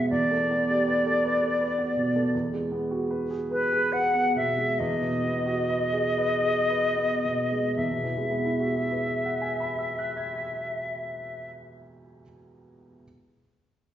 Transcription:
Already playing: grand piano B2 G#3 B3 G#4 B4 C#5
0.10 grand piano E2, flute D5
0.31 grand piano A3
0.51 grand piano B3
0.69 grand piano G4
0.88 grand piano B4
1.06 grand piano A4
1.25 grand piano B4
1.42 grand piano A4
1.61 grand piano B4
1.78 grand piano B3
1.97 grand piano B2
2.16 grand piano A3
2.35 grand piano E2
2.53 grand piano G#3
2.71 grand piano B3
2.91 grand piano F#4
3.11 grand piano B4
3.31 grand piano G#4
3.51 flute B4, grand piano B4
3.72 grand piano G#4
3.93 grand piano B4, flute F#5
4.14 grand piano B3
4.36 grand piano B2, flute E5
4.57 grand piano G#3
4.79 grand piano E2, flute D#5
5.02 grand piano B2
5.24 grand piano B3
5.46 grand piano F#4
5.70 grand piano B4
5.93 grand piano G#4
6.18 grand piano B4
6.43 grand piano G#4
6.70 grand piano B4
6.96 grand piano B3
7.25 grand piano B2
7.52 grand piano G#3
7.76 grand piano E2, flute E5
7.90 grand piano B2
8.04 grand piano E3
8.17 grand piano G#3
8.31 grand piano B3
8.45 grand piano E4
8.60 grand piano F#4
8.75 grand piano G#4
8.92 grand piano B4
9.08 grand piano E5
9.25 grand piano F#5
9.42 grand piano G#5
9.60 grand piano B5
9.79 grand piano E6
9.99 grand piano F#6
10.17 grand piano G#6
10.38 grand piano B6

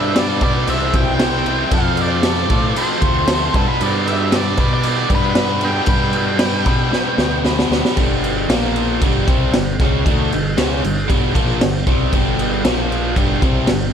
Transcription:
Already playing: picked electric bass G2, overdriven electric guitar G3 B3 D4 B4, lead electric guitar E5
0.15 overdriven electric guitar G3 B3 D4 B4, lead electric guitar D5, snare, crash
0.41 picked electric bass B2, overdriven electric guitar G3 B3 D4 B4, lead electric guitar D5, kick, crash
0.67 picked electric bass C2, overdriven electric guitar C3 E3 G3 C4 E4 C5, lead electric guitar E5, crash
0.93 picked electric bass C2, lead electric guitar G5, kick, crash
1.19 overdriven electric guitar C3 E3 G3 C4 E4 C5, snare, crash
1.46 overdriven electric guitar C3 E3 G3 C4 E4 C5, crash
1.71 picked electric bass F2, overdriven electric guitar F3 A3 C4 F4 A4, lead electric guitar F5, kick, crash
1.97 crash
2.02 lead electric guitar D5
2.23 overdriven electric guitar F3 A3 C4 F4 A4, snare, crash
2.50 picked electric bass A2, overdriven electric guitar F3 A3 C4 F4 A4, kick, crash
2.76 overdriven electric guitar F3 A3 C4 F4 A4, lead electric guitar C5, crash
3.02 picked electric bass D2, kick, crash
3.28 overdriven electric guitar F3 A3 C4 F4 A4, snare, crash
3.54 picked electric bass G2, overdriven electric guitar G3 B3 D4 B4, lead electric guitar A4, kick, crash
3.68 lead electric guitar B4
3.80 picked electric bass G2, overdriven electric guitar G3 B3 D4 B4, lead electric guitar D5, crash
4.07 lead electric guitar E5, crash
4.32 overdriven electric guitar G3 B3 D4 B4, lead electric guitar D5, snare, crash
4.57 picked electric bass B2, overdriven electric guitar G3 B3 D4 B4, kick, crash
4.74 lead electric guitar D5
4.83 overdriven electric guitar G3 B3 D4 B4, crash
5.10 picked electric bass G2, kick, crash
5.15 lead electric guitar B4
5.35 overdriven electric guitar G3 B3 D4 B4, snare, crash
5.61 overdriven electric guitar G3 B3 D4 B4, lead electric guitar G5, crash
5.86 picked electric bass G2, overdriven electric guitar G3 B3 D4 B4, kick, crash
6.13 crash
6.39 overdriven electric guitar G3 B3 D4 B4, snare, crash
6.65 picked electric bass B2, overdriven electric guitar G3 B3 D4 B4, kick, crash
6.91 overdriven electric guitar G3 B3 D4 B4, snare
7.18 picked electric bass D2, snare
7.45 overdriven electric guitar G3 B3 D4 B4, snare
7.59 snare
7.70 picked electric bass D2, overdriven electric guitar G3 B3 D4 B4, snare
7.85 snare
7.96 picked electric bass G1, overdriven electric guitar G2 D3 G3, kick, crash
8.24 crash
8.48 picked electric bass A#1, overdriven electric guitar A#2 F3 A#3, snare, crash
8.76 crash
9.01 picked electric bass G1, overdriven electric guitar G2 D3 G3, kick, crash
9.28 picked electric bass C2, overdriven electric guitar C3 G3 C4, kick, crash
9.53 picked electric bass G1, overdriven electric guitar G2 D3, snare, crash
9.80 picked electric bass C#2, overdriven electric guitar C#3 G#3 C#4, kick, snare, crash
10.06 picked electric bass D2, overdriven electric guitar D3 A3 D4, kick, crash
10.32 picked electric bass G1, overdriven electric guitar G2 D3, crash
10.57 picked electric bass C#2, overdriven electric guitar C#3 G#3 C#4, snare, crash
10.83 picked electric bass G1, overdriven electric guitar G2 D3, crash
11.08 picked electric bass G1, overdriven electric guitar G2 D3 G3, kick, crash
11.34 picked electric bass A#1, overdriven electric guitar A#2 F3 A#3, kick, crash
11.61 picked electric bass G1, overdriven electric guitar G2 D3, snare, crash
11.87 picked electric bass C2, overdriven electric guitar C3 G3 C4, kick, crash
12.13 picked electric bass G1, overdriven electric guitar G2 D3 G3, kick, crash
12.39 crash
12.65 picked electric bass A#1, overdriven electric guitar A#2 F3 A#3, snare, crash
12.92 crash
13.16 picked electric bass G1, overdriven electric guitar G2 D3 G3, kick, crash
13.42 picked electric bass C2, overdriven electric guitar C3 G3 C4, kick, crash
13.67 picked electric bass G1, overdriven electric guitar G2 D3, snare, crash

